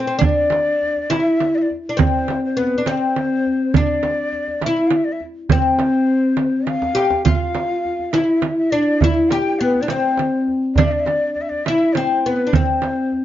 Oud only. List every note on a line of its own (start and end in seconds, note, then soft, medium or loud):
0.07 0.16 C4 medium
0.19 1.05 D4 medium
1.10 1.65 E4 loud
1.89 1.97 D4 medium
1.97 2.56 C4 medium
2.57 2.80 B3 medium
2.78 2.86 D4 medium
2.87 3.77 C4 medium
3.76 4.59 D4 medium
4.66 5.19 E4 medium
5.52 7.02 C4 loud
6.95 7.25 G4 loud
7.25 8.13 F4 loud
8.14 8.72 E4 medium
8.72 9.02 D4 medium
9.04 9.31 E4 medium
9.32 9.61 G4 medium
9.61 9.82 B3 medium
9.83 9.89 D4 medium
9.90 10.80 C4 medium
10.78 11.61 D4 medium
11.68 11.96 E4 medium
11.97 12.25 C4 medium
12.26 12.47 B3 medium
12.47 12.53 D4 medium
12.55 13.25 C4 medium